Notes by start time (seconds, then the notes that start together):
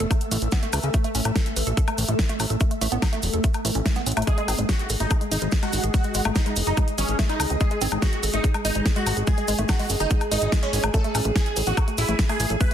Already playing: A3 A4 E5 E6
0.00 E1 A4, closed hi-hat
0.11 A3, kick, closed hi-hat, cabasa, high woodblock
0.21 closed hi-hat, cabasa
0.31 A1 A3, open hi-hat, cabasa
0.42 A1, closed hi-hat, cabasa
0.52 B3, kick, snare, closed hi-hat, cabasa
0.63 A3, closed hi-hat, cabasa
0.73 C#2 B4, open hi-hat, cabasa, high woodblock
0.83 C#2 C#4, closed hi-hat, cabasa
0.94 A3, kick, closed hi-hat, cabasa
1.04 A3, closed hi-hat, cabasa
1.15 A1 C#4, open hi-hat, cabasa
1.25 A1 A3, closed hi-hat, cabasa, high woodblock
1.36 A4, kick, snare, closed hi-hat, cabasa
1.46 closed hi-hat, cabasa
1.56 A1 B4, open hi-hat, cabasa
1.67 A1 A4, closed hi-hat, cabasa
1.77 A4, kick, closed hi-hat, cabasa
1.88 A3, closed hi-hat, cabasa, high woodblock
1.98 A1, open hi-hat, cabasa
2.08 A1 A3, closed hi-hat, cabasa
2.19 A4, kick, snare, closed hi-hat, cabasa
2.29 A3, closed hi-hat, cabasa
2.40 A1, open hi-hat, cabasa, high woodblock
2.50 A1 A4, closed hi-hat, cabasa
2.60 A3, kick, closed hi-hat, cabasa
2.71 A3, closed hi-hat, cabasa
2.81 A1 A3, open hi-hat, cabasa
2.92 A1 B3, closed hi-hat, cabasa
3.02 A4, kick, snare, closed hi-hat, cabasa, high woodblock
3.13 A3, closed hi-hat, cabasa
3.23 E1, open hi-hat, cabasa
3.33 E1 A4, closed hi-hat, cabasa
3.44 A3, kick, closed hi-hat, cabasa
3.54 closed hi-hat, cabasa, high woodblock
3.65 A1 A3, open hi-hat, cabasa
3.75 A1 C#4, closed hi-hat, cabasa
3.86 A3, kick, snare, closed hi-hat, cabasa
3.95 B3, snare, closed hi-hat, cabasa
4.06 A1 C#4, closed hi-hat, open hi-hat, cabasa
4.12 closed hi-hat
4.17 A1 A3, closed hi-hat, cabasa, high woodblock
4.22 closed hi-hat
4.27 G#3 G#4, kick, closed hi-hat, cabasa
4.37 G#3 G#4, closed hi-hat, cabasa
4.41 D#5
4.48 G#1 C4, open hi-hat, cabasa, high woodblock
4.58 G#1 G#3, closed hi-hat, cabasa
4.69 F#4 G#4, kick, snare, closed hi-hat, cabasa
4.79 D#6, closed hi-hat, cabasa
4.89 G#1 A4, open hi-hat, cabasa
5.00 G#1 A3 D#4, closed hi-hat, cabasa
5.10 G#4, kick, closed hi-hat, cabasa, high woodblock
5.21 G#3, closed hi-hat, cabasa
5.31 G#1 D#4, open hi-hat, cabasa
5.41 G#1 G#3, closed hi-hat, cabasa
5.52 G#4, kick, snare, closed hi-hat, cabasa
5.63 G#3 F#4, closed hi-hat, cabasa, high woodblock
5.73 G#1, open hi-hat, cabasa
5.83 G#1 G#4, closed hi-hat, cabasa
5.94 G#3 F#4, kick, closed hi-hat, cabasa
6.03 G#3, closed hi-hat, cabasa
6.14 G#1 G#3, open hi-hat, cabasa
6.25 G#1 A3, closed hi-hat, cabasa, high woodblock
6.35 D#4 G#4, kick, snare, closed hi-hat, cabasa
6.46 G#3, closed hi-hat, cabasa
6.56 F#1, open hi-hat, cabasa
6.66 F#1 D#4 G#4, closed hi-hat, cabasa
6.77 G#3, kick, closed hi-hat, cabasa, high woodblock
6.88 closed hi-hat, cabasa
6.98 G#1 G#3 C#4, open hi-hat, cabasa
7.09 G#1, closed hi-hat, cabasa
7.19 A3, kick, snare, closed hi-hat, cabasa
7.29 G#3 D#4, closed hi-hat, cabasa
7.40 C#2 A4, open hi-hat, cabasa, high woodblock
7.50 C#2 C4, closed hi-hat, cabasa
7.60 G#3 G#4, kick, closed hi-hat, cabasa
7.71 G#3, closed hi-hat, cabasa
7.81 G#1 C4, open hi-hat, cabasa
7.91 G#1 G#3, closed hi-hat, cabasa, high woodblock
8.02 F#4 G#4, kick, snare, closed hi-hat, cabasa
8.12 closed hi-hat, cabasa
8.23 G#1 A4, open hi-hat, cabasa
8.33 G#1 A3 D#4, closed hi-hat, cabasa
8.44 G#4, kick, closed hi-hat, cabasa
8.54 G#3, closed hi-hat, cabasa, high woodblock
8.65 G#1 D#4, open hi-hat, cabasa
8.75 G#1 G#3, closed hi-hat, cabasa
8.86 G#4, kick, snare, closed hi-hat, cabasa
8.95 G#3 F#4, closed hi-hat, cabasa
9.06 G#1, open hi-hat, cabasa, high woodblock
9.17 G#1 G#4, closed hi-hat, cabasa
9.27 G#3 G#4, kick, closed hi-hat, cabasa
9.38 G#3, closed hi-hat, cabasa
9.48 G#1 G#3, open hi-hat, cabasa
9.58 G#1 A3, closed hi-hat, cabasa
9.69 F#4 G#4, kick, snare, closed hi-hat, cabasa, high woodblock
9.79 G#3, open hi-hat, cabasa
9.90 F#1, open hi-hat, cabasa
10.00 F#1 D#4 G#4, closed hi-hat, cabasa
10.10 G#3, kick, closed hi-hat, cabasa
10.21 closed hi-hat, cabasa, high woodblock
10.31 G#1 G#3 D#4, open hi-hat, cabasa
10.42 G#1, closed hi-hat, cabasa
10.52 G#3, kick, snare, closed hi-hat, cabasa
10.63 G#3 C#4, closed hi-hat, cabasa
10.73 G#1 G#3, open hi-hat, cabasa
10.83 G#1 A3, closed hi-hat, cabasa, high woodblock
10.94 A3 A4, kick, closed hi-hat, cabasa
11.04 A3 E5, closed hi-hat, cabasa
11.15 A1 C#4, open hi-hat, cabasa, high woodblock
11.25 A1 A3, closed hi-hat, cabasa
11.36 G#4 A4, kick, snare, closed hi-hat, cabasa
11.46 closed hi-hat, cabasa
11.56 A1 B4, open hi-hat, cabasa
11.67 A1 B3 F#4, closed hi-hat, cabasa
11.77 A4, kick, closed hi-hat, cabasa, high woodblock
11.88 A3, closed hi-hat, cabasa
11.98 A1 E4, open hi-hat, cabasa
12.09 A1 A3, closed hi-hat, cabasa
12.19 A4, kick, snare, closed hi-hat, cabasa
12.29 A3 G#4, closed hi-hat, cabasa, high woodblock
12.40 A1, open hi-hat, cabasa
12.50 A1 A4, closed hi-hat, cabasa
12.60 A3 B4, kick, closed hi-hat, cabasa